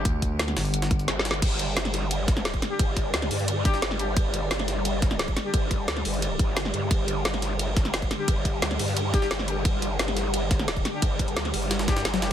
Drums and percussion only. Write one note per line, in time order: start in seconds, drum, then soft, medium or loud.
0.05 kick loud
0.05 closed hi-hat medium
0.05 closed hi-hat loud
0.22 kick medium
0.22 closed hi-hat medium
0.39 snare loud
0.39 closed hi-hat loud
0.39 closed hi-hat medium
0.48 snare soft
0.48 closed hi-hat soft
0.57 snare loud
0.57 closed hi-hat medium
0.57 open hi-hat medium
0.65 closed hi-hat soft
0.74 closed hi-hat loud
0.74 closed hi-hat medium
0.82 snare loud
0.82 closed hi-hat medium
0.91 kick loud
0.91 closed hi-hat medium
0.91 closed hi-hat soft
0.99 closed hi-hat medium
1.08 snare medium
1.08 closed hi-hat loud
1.08 closed hi-hat medium
1.19 snare medium
1.25 snare loud
1.25 closed hi-hat medium
1.31 snare loud
1.31 closed hi-hat soft
1.42 kick loud
1.42 closed hi-hat loud
1.42 closed hi-hat medium
1.42 crash loud
1.42 ride bell medium
1.59 closed hi-hat medium
1.59 ride bell medium
1.77 snare loud
1.77 closed hi-hat medium
1.77 ride bell medium
1.85 snare soft
1.85 closed hi-hat soft
1.94 snare medium
1.94 closed hi-hat medium
1.94 ride bell medium
2.11 closed hi-hat medium
2.11 ride bell medium
2.28 kick loud
2.28 snare medium
2.28 closed hi-hat medium
2.28 ride bell medium
2.37 snare soft
2.37 closed hi-hat soft
2.45 snare loud
2.45 closed hi-hat medium
2.45 closed hi-hat loud
2.45 ride bell medium
2.54 kick medium
2.54 closed hi-hat soft
2.62 snare soft
2.62 closed hi-hat medium
2.62 ride bell medium
2.79 kick loud
2.79 closed hi-hat loud
2.79 closed hi-hat medium
2.79 ride bell medium
2.97 kick medium
2.97 closed hi-hat medium
2.97 ride bell medium
3.14 snare loud
3.14 closed hi-hat loud
3.14 closed hi-hat medium
3.14 ride bell medium
3.22 snare soft
3.22 closed hi-hat soft
3.31 closed hi-hat medium
3.31 open hi-hat medium
3.31 ride bell medium
3.39 closed hi-hat soft
3.48 closed hi-hat medium
3.48 ride bell medium
3.65 kick loud
3.65 snare soft
3.65 closed hi-hat medium
3.65 ride bell medium
3.74 snare medium
3.82 snare loud
3.82 closed hi-hat medium
3.82 closed hi-hat loud
3.82 ride bell medium
3.91 snare soft
3.99 closed hi-hat medium
3.99 ride bell soft
4.17 kick loud
4.17 closed hi-hat medium
4.17 ride bell medium
4.34 closed hi-hat medium
4.34 ride bell medium
4.51 snare loud
4.51 closed hi-hat medium
4.51 ride bell medium
4.59 snare soft
4.59 closed hi-hat soft
4.68 snare medium
4.68 closed hi-hat medium
4.68 ride bell medium
4.85 closed hi-hat medium
4.85 ride bell medium
5.02 kick loud
5.02 snare medium
5.02 closed hi-hat medium
5.02 ride bell medium
5.11 snare soft
5.11 closed hi-hat soft
5.19 snare loud
5.19 closed hi-hat medium
5.19 ride bell medium
5.28 kick medium
5.28 closed hi-hat soft
5.37 snare soft
5.37 closed hi-hat medium
5.37 ride bell medium
5.54 kick loud
5.54 closed hi-hat medium
5.54 ride bell medium
5.71 kick medium
5.71 closed hi-hat medium
5.71 ride bell medium
5.88 snare loud
5.88 closed hi-hat medium
5.88 ride bell medium
5.97 snare soft
5.97 closed hi-hat soft
6.05 closed hi-hat medium
6.05 open hi-hat medium
6.05 ride bell medium
6.14 closed hi-hat soft
6.22 closed hi-hat medium
6.22 ride bell medium
6.39 kick loud
6.39 closed hi-hat medium
6.39 ride bell medium
6.57 snare loud
6.57 closed hi-hat medium
6.57 ride bell medium
6.65 snare soft
6.74 closed hi-hat medium
6.74 ride bell medium
6.91 kick loud
6.91 closed hi-hat medium
6.91 ride bell medium
7.08 closed hi-hat medium
7.08 ride bell medium
7.25 snare loud
7.25 closed hi-hat medium
7.25 ride bell medium
7.34 snare soft
7.34 closed hi-hat soft
7.42 snare medium
7.42 closed hi-hat medium
7.42 ride bell medium
7.59 closed hi-hat medium
7.59 ride bell medium
7.77 kick loud
7.77 snare medium
7.77 closed hi-hat medium
7.77 ride bell medium
7.85 snare soft
7.85 closed hi-hat soft
7.94 snare loud
7.94 closed hi-hat medium
7.94 ride bell medium
8.02 kick medium
8.02 closed hi-hat soft
8.11 snare soft
8.11 closed hi-hat medium
8.11 ride bell medium
8.28 kick loud
8.28 closed hi-hat medium
8.28 closed hi-hat loud
8.28 ride bell medium
8.45 kick medium
8.45 closed hi-hat medium
8.45 ride bell medium
8.62 snare loud
8.62 closed hi-hat medium
8.62 ride bell medium
8.71 snare soft
8.71 closed hi-hat soft
8.79 closed hi-hat medium
8.79 open hi-hat medium
8.79 ride bell medium
8.88 closed hi-hat soft
8.97 closed hi-hat medium
8.97 ride bell medium
9.14 kick loud
9.14 snare soft
9.14 closed hi-hat medium
9.14 ride bell medium
9.22 snare medium
9.31 snare loud
9.31 closed hi-hat medium
9.31 ride bell medium
9.39 snare soft
9.48 closed hi-hat medium
9.48 ride bell medium
9.65 kick loud
9.65 closed hi-hat loud
9.65 closed hi-hat medium
9.65 ride bell medium
9.82 closed hi-hat medium
9.82 ride bell medium
9.99 snare loud
9.99 closed hi-hat medium
9.99 closed hi-hat loud
9.99 ride bell medium
10.08 snare soft
10.08 closed hi-hat soft
10.17 snare medium
10.17 closed hi-hat medium
10.17 ride bell medium
10.34 closed hi-hat medium
10.34 ride bell medium
10.51 kick loud
10.51 snare medium
10.51 closed hi-hat medium
10.51 ride bell medium
10.59 snare soft
10.59 closed hi-hat soft
10.68 snare loud
10.68 closed hi-hat medium
10.68 closed hi-hat loud
10.68 ride bell medium
10.77 kick medium
10.77 closed hi-hat soft
10.85 snare soft
10.85 closed hi-hat medium
10.85 ride bell medium
11.02 kick loud
11.02 closed hi-hat loud
11.02 closed hi-hat medium
11.02 ride bell medium
11.19 kick medium
11.19 closed hi-hat medium
11.19 ride bell medium
11.28 closed hi-hat soft
11.37 snare loud
11.37 closed hi-hat loud
11.37 closed hi-hat medium
11.37 ride bell medium
11.45 snare soft
11.45 closed hi-hat soft
11.54 closed hi-hat medium
11.54 open hi-hat medium
11.54 ride bell medium
11.62 closed hi-hat soft
11.71 snare loud
11.71 closed hi-hat medium
11.71 closed hi-hat loud
11.71 ride bell medium
11.79 snare loud
11.79 closed hi-hat medium
11.88 kick loud
11.88 snare loud
11.88 closed hi-hat medium
11.88 ride bell medium
11.97 snare loud
11.97 closed hi-hat medium
12.05 snare loud
12.05 snare medium
12.05 closed hi-hat medium
12.05 closed hi-hat loud
12.05 ride bell medium
12.14 snare loud
12.14 closed hi-hat medium
12.14 high tom medium
12.22 snare loud
12.22 closed hi-hat medium
12.22 ride bell medium